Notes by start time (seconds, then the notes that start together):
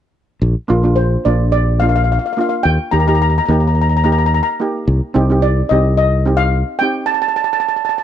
0.42 A#1
0.68 A#1 A#3 D4 F4
0.83 A#3 D4 F4
0.96 C5
1.25 A#1 A#3 D4 F4 D5
1.52 D5
1.80 A#3 D4 F4 F5
1.89 F5
1.96 F5
2.04 F5
2.12 F5
2.19 F5
2.26 F5
2.33 F5
2.37 A#3 D4 F4 F5
2.49 F5
2.63 D#2 G5
2.91 D#2 A#3 D#4 G4 A#5
3.00 A#5
3.07 A#3 D#4 G4 A#5
3.15 A#5
3.22 A#5
3.30 A#5
3.38 A#5
3.46 D#2 A#3 D#4 A#5
3.51 G4 A#5
3.60 A#5
3.68 A#5
3.75 A#5
3.82 A#5
3.89 A#5
3.97 A#5
4.04 A#3 D#4 G4 A#5
4.12 A#5
4.18 A#5
4.26 A#5
4.34 A#5
4.43 A#5
4.60 A#3 D#4 G4
4.87 C2
5.14 C2 C4 D#4 G4
5.30 C4 D#4 G4
5.42 D5
5.69 C2 C4 D#4 G4 D#5
5.97 D#5
6.26 C4 D#4 G4
6.37 F5
6.79 C4 D#4 G4 G5
7.06 A5
7.14 A5
7.22 A5
7.28 A5
7.36 A5
7.44 A5
7.53 A5
7.60 A5
7.69 A5
7.76 A5
7.85 A5
7.89 A5
7.98 A5